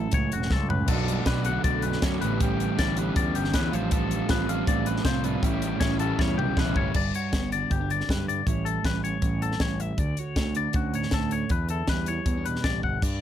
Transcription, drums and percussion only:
0.12 kick, closed hi-hat
0.32 closed hi-hat
0.42 snare
0.51 kick, snare
0.70 floor tom
0.88 kick, closed hi-hat, crash
1.08 closed hi-hat
1.26 kick, snare, closed hi-hat
1.44 closed hi-hat
1.64 kick, closed hi-hat
1.82 closed hi-hat
1.92 snare
2.02 kick, snare, closed hi-hat
2.22 closed hi-hat
2.41 kick, closed hi-hat
2.60 closed hi-hat
2.79 kick, snare, closed hi-hat
2.97 closed hi-hat
3.16 kick, closed hi-hat
3.35 closed hi-hat
3.44 snare
3.54 kick, snare, closed hi-hat
3.73 closed hi-hat
3.91 kick, closed hi-hat
4.11 closed hi-hat
4.29 kick, snare, closed hi-hat
4.49 closed hi-hat
4.67 kick, closed hi-hat
4.86 closed hi-hat
4.96 snare
5.05 kick, snare, closed hi-hat
5.24 closed hi-hat
5.43 kick, closed hi-hat
5.62 closed hi-hat
5.81 kick, snare, closed hi-hat
5.99 closed hi-hat
6.19 kick, snare
6.39 mid tom
6.57 kick, snare
6.76 kick
6.94 kick, crash
7.14 closed hi-hat
7.33 kick, snare, closed hi-hat
7.52 closed hi-hat
7.71 kick, closed hi-hat
7.90 closed hi-hat
8.00 snare
8.09 kick, snare, closed hi-hat
8.29 closed hi-hat
8.47 kick, closed hi-hat
8.66 closed hi-hat
8.85 kick, snare, closed hi-hat
9.05 closed hi-hat
9.22 kick, closed hi-hat
9.42 closed hi-hat
9.52 snare
9.60 kick, snare, closed hi-hat
9.80 closed hi-hat
9.98 kick, closed hi-hat
10.17 closed hi-hat
10.36 kick, snare, closed hi-hat
10.55 closed hi-hat
10.73 kick, closed hi-hat
10.94 closed hi-hat
11.03 snare
11.11 kick, snare, closed hi-hat
11.31 closed hi-hat
11.49 kick, closed hi-hat
11.69 closed hi-hat
11.87 kick, snare, closed hi-hat
12.06 closed hi-hat
12.26 kick, closed hi-hat
12.46 closed hi-hat
12.56 snare
12.64 kick, snare, closed hi-hat
12.83 kick
13.02 kick, closed hi-hat, splash

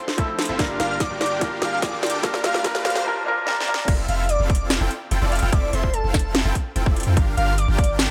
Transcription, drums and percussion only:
0.08 snare
0.18 kick, closed hi-hat
0.39 snare, closed hi-hat
0.42 closed hi-hat
0.45 closed hi-hat
0.59 kick, snare, closed hi-hat
0.80 snare, closed hi-hat
1.00 kick, snare, closed hi-hat
1.21 snare, closed hi-hat
1.26 closed hi-hat
1.41 kick, snare, closed hi-hat
1.62 snare, closed hi-hat
1.82 kick, snare, closed hi-hat
2.03 snare, closed hi-hat
2.06 closed hi-hat
2.10 closed hi-hat
2.23 kick, snare, closed hi-hat
2.34 snare
2.44 snare, closed hi-hat
2.54 snare
2.64 kick, snare, closed hi-hat
2.75 snare
2.85 snare, closed hi-hat
2.90 closed hi-hat
2.96 snare
3.47 snare
3.60 snare
3.74 snare
3.88 kick, closed hi-hat, crash
4.09 closed hi-hat
4.29 closed hi-hat
4.50 kick, closed hi-hat
4.55 closed hi-hat
4.70 snare, closed hi-hat
4.91 closed hi-hat
5.11 closed hi-hat
5.32 closed hi-hat
5.35 closed hi-hat
5.39 closed hi-hat
5.53 kick, closed hi-hat
5.73 closed hi-hat
5.84 kick
5.94 closed hi-hat
6.14 kick, snare, closed hi-hat
6.19 closed hi-hat
6.35 snare, closed hi-hat
6.55 kick, closed hi-hat
6.76 closed hi-hat
6.86 kick
6.96 closed hi-hat
7.00 closed hi-hat
7.03 closed hi-hat
7.17 kick, closed hi-hat
7.38 closed hi-hat
7.58 closed hi-hat
7.78 kick, closed hi-hat
7.84 closed hi-hat
7.99 snare, closed hi-hat

